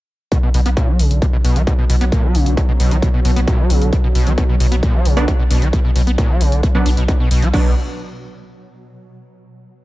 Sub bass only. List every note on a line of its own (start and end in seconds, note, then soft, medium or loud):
0.54 0.65 B1 loud
0.66 0.77 B1 medium
0.99 1.10 B1 medium
1.11 1.22 B1 medium
1.45 1.55 B1 loud
1.56 1.67 B1 medium
1.90 2.00 B1 loud
2.01 2.12 B1 medium
2.35 2.46 B1 medium
2.46 2.57 B1 medium
2.80 2.91 B1 medium
2.91 3.02 B1 medium
3.25 3.36 B1 loud
3.36 3.47 B1 medium
3.70 3.81 B1 loud
3.82 3.92 B1 medium
4.15 4.26 B1 medium
4.27 4.38 B1 medium
4.60 4.71 B1 loud
4.72 4.83 B1 medium
5.05 5.16 B1 loud
5.17 5.28 B1 medium
5.51 5.61 B1 loud
5.62 5.73 B1 medium
5.96 6.06 B1 loud
6.07 6.18 B1 medium
6.41 6.52 B1 loud
6.52 6.63 B1 medium
6.86 6.97 B1 loud
6.97 7.08 B1 medium
7.31 7.42 B1 loud
7.42 7.53 B1 medium
7.54 7.75 B1 loud